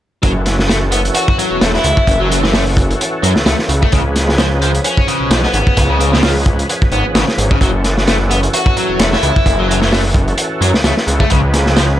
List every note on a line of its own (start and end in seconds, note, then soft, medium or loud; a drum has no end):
0.23 1.10 F#1 medium
0.23 3.89 E3 medium
0.23 0.32 F#3 medium
0.23 11.27 C#4 medium
0.23 3.89 F#4 medium
0.23 3.89 A4 medium
0.23 kick medium
0.23 closed hi-hat medium
0.46 snare soft
0.46 closed hi-hat medium
0.59 snare soft
0.68 0.78 A3 medium
0.68 snare loud
0.68 closed hi-hat medium
0.92 1.01 B3 medium
0.92 closed hi-hat medium
1.05 closed hi-hat soft
1.15 1.37 F#4 medium
1.15 closed hi-hat medium
1.28 kick medium
1.38 1.60 F#3 medium
1.38 closed hi-hat medium
1.51 1.59 E1 soft
1.61 1.78 E1 medium
1.61 1.70 A3 medium
1.61 snare loud
1.61 closed hi-hat medium
1.74 2.19 E4 medium
1.74 snare soft
1.84 1.93 C#2 loud
1.84 closed hi-hat medium
1.97 kick medium
2.07 2.95 F#1 loud
2.07 kick loud
2.07 closed hi-hat medium
2.20 2.29 F#3 medium
2.30 2.42 F#3 medium
2.30 closed hi-hat medium
2.43 2.52 E3 loud
2.43 snare soft
2.53 2.62 A3 medium
2.53 snare loud
2.53 open hi-hat medium
2.77 kick medium
2.77 closed hi-hat medium
2.91 closed hi-hat soft
3.01 closed hi-hat medium
3.23 3.35 F#2 medium
3.23 3.32 F#3 medium
3.23 closed hi-hat medium
3.36 3.44 C#2 soft
3.36 snare medium
3.46 3.55 C#2 medium
3.46 3.55 A3 medium
3.46 snare loud
3.46 closed hi-hat medium
3.59 snare medium
3.69 3.86 C#2 loud
3.69 closed hi-hat medium
3.82 3.91 A3 medium
3.82 kick medium
3.92 4.80 C#2 loud
3.92 4.01 C#3 medium
3.92 7.58 F3 medium
3.92 7.58 G#4 medium
3.92 7.58 B4 medium
3.92 kick loud
3.92 closed hi-hat medium
4.16 snare soft
4.16 closed hi-hat medium
4.29 snare soft
4.38 4.47 F3 medium
4.38 snare loud
4.38 closed hi-hat medium
4.62 4.71 F3 medium
4.62 closed hi-hat medium
4.75 closed hi-hat soft
4.84 5.07 C#4 medium
4.84 closed hi-hat medium
4.97 kick medium
5.08 5.30 C#3 medium
5.08 closed hi-hat medium
5.20 5.29 B1 soft
5.30 5.47 B1 medium
5.30 5.40 F3 medium
5.30 snare loud
5.30 closed hi-hat medium
5.43 5.88 B3 medium
5.43 snare soft
5.53 5.62 G#1 loud
5.53 closed hi-hat medium
5.67 kick medium
5.77 6.64 C#2 medium
5.77 kick loud
5.77 closed hi-hat medium
5.89 5.98 C#3 medium
6.00 6.11 C#3 medium
6.00 closed hi-hat medium
6.13 6.22 B2 loud
6.13 snare medium
6.23 6.32 F3 medium
6.23 snare loud
6.23 open hi-hat medium
6.46 kick medium
6.46 closed hi-hat medium
6.59 closed hi-hat soft
6.69 closed hi-hat medium
6.82 kick medium
6.92 7.04 G#1 medium
6.92 7.04 B3 loud
6.92 closed hi-hat medium
7.05 7.13 G#1 soft
7.15 7.24 G#1 medium
7.15 7.24 C#3 medium
7.15 snare loud
7.15 closed hi-hat medium
7.28 snare medium
7.38 7.55 G#1 loud
7.38 closed hi-hat medium
7.51 7.58 C#3 medium
7.51 kick loud
7.61 8.48 F#1 loud
7.61 11.27 E3 medium
7.61 7.70 F#3 medium
7.61 11.27 F#4 medium
7.61 11.27 A4 medium
7.61 kick loud
7.61 closed hi-hat medium
7.84 snare soft
7.84 closed hi-hat medium
7.97 snare soft
8.08 8.17 A3 medium
8.08 snare loud
8.08 closed hi-hat medium
8.31 8.40 B3 medium
8.31 closed hi-hat medium
8.43 closed hi-hat soft
8.54 8.76 F#4 medium
8.54 closed hi-hat medium
8.66 kick loud
8.77 8.99 F#3 medium
8.77 closed hi-hat medium
8.89 8.98 E1 soft
8.99 9.16 E1 medium
8.99 9.09 A3 medium
8.99 snare loud
8.99 closed hi-hat medium
9.13 9.58 E4 medium
9.13 snare soft
9.23 9.32 C#2 loud
9.23 closed hi-hat medium
9.36 kick medium
9.46 10.33 F#1 loud
9.46 kick loud
9.46 closed hi-hat medium
9.59 9.68 F#3 medium
9.69 9.81 F#3 medium
9.69 closed hi-hat medium
9.81 9.91 E3 loud
9.81 snare medium
9.92 10.01 A3 medium
9.92 snare loud
9.92 open hi-hat medium
10.14 kick loud
10.14 closed hi-hat medium
10.28 closed hi-hat soft
10.38 closed hi-hat medium
10.61 10.73 F#2 medium
10.61 10.70 F#3 medium
10.61 closed hi-hat medium
10.74 10.82 C#2 soft
10.74 snare medium
10.84 10.93 C#2 medium
10.84 10.94 A3 medium
10.84 snare loud
10.84 closed hi-hat medium
10.97 snare medium
11.07 11.24 C#2 loud
11.07 closed hi-hat medium
11.20 11.30 A3 medium
11.20 kick medium
11.30 12.00 C#2 loud
11.30 11.40 C#3 medium
11.30 12.00 F3 medium
11.30 12.00 C#4 medium
11.30 12.00 G#4 medium
11.30 12.00 B4 medium
11.30 kick loud
11.30 closed hi-hat medium
11.54 snare soft
11.54 closed hi-hat medium
11.66 snare soft
11.77 11.86 F3 medium
11.77 snare loud
11.77 closed hi-hat medium